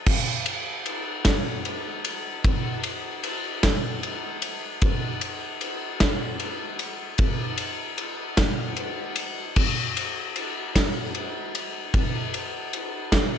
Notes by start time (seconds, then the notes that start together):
0.06 kick, crash
0.46 ride
0.86 ride
1.25 kick, snare, ride
1.65 ride
2.05 ride
2.44 kick, ride
2.83 ride
3.23 ride
3.63 kick, snare, ride
4.03 ride
4.42 ride
4.82 kick, ride
5.21 ride
5.61 ride
6.00 kick, snare, ride
6.40 ride
6.79 ride
7.18 kick, ride
7.58 ride
7.98 ride
8.37 kick, snare, ride
8.77 ride
9.16 ride
9.56 kick, crash
9.97 ride
10.36 ride
10.75 kick, snare, ride
11.15 ride
11.55 ride
11.94 kick, ride
12.34 ride
12.73 ride
13.12 kick, snare, ride